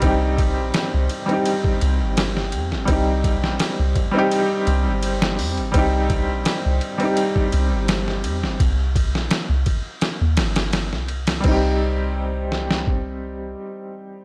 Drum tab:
CC |----------------|----------------|----------------|----------------|
RD |x-x-x-xxx-x-x-x-|x-x-x-x-x-x-x--x|x-x-x-xxx-x-x-x-|x-x-x-x-x-xxx-xx|
HH |----------------|--------------o-|----------------|----------------|
SD |----o-------oo-o|---oo--------o--|----o-------oo-o|---oo---o-oooo-o|
BD |o-o------o------|o-o---o---------|o-o------o------|o-o---o---------|

CC |x---------------|
RD |----------------|
HH |----------------|
SD |------oo--------|
BD |o-------o-------|